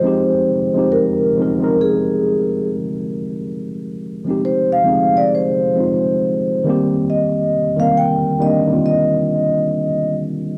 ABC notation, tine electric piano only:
X:1
M:4/4
L:1/16
Q:"Swing 16ths" 1/4=68
K:Fm
V:1 name="Tine electric piano"
[F,A,CEG]2 z [F,A,CEG]2 z [F,A,CEB] [F,A,CEB]4- [F,A,CEB] z4 | z3 [F,A,CEG]2 z [F,A,CEA]3 z [F,A,CEF]4 [E,G,B,CG]2- | [E,G,B,CG]2 z [E,G,B,CB]2 z [E,G,B,C=D] [E,G,B,CF]4- [E,G,B,CF] z4 |]